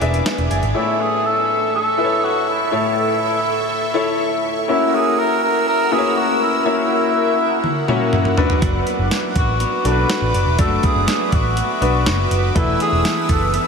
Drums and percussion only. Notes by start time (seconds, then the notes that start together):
0.01 closed hi-hat
0.14 closed hi-hat
0.26 snare, closed hi-hat, tambourine
0.38 closed hi-hat
0.51 closed hi-hat
0.63 closed hi-hat
7.64 high tom
7.88 mid tom
8.13 mid tom
8.25 mid tom
8.37 floor tom
8.50 floor tom
8.62 kick, closed hi-hat
8.87 closed hi-hat
9.11 snare, closed hi-hat, tambourine
9.36 kick, closed hi-hat
9.60 closed hi-hat
9.85 closed hi-hat
10.09 snare, closed hi-hat, tambourine
10.34 closed hi-hat
10.59 kick, closed hi-hat
10.83 kick, closed hi-hat
11.08 snare, closed hi-hat, tambourine
11.32 kick, closed hi-hat
11.57 closed hi-hat
11.82 closed hi-hat
12.06 snare, closed hi-hat, tambourine
12.31 closed hi-hat
12.56 kick, closed hi-hat
12.80 closed hi-hat
13.05 snare, closed hi-hat, tambourine
13.29 kick, closed hi-hat
13.54 closed hi-hat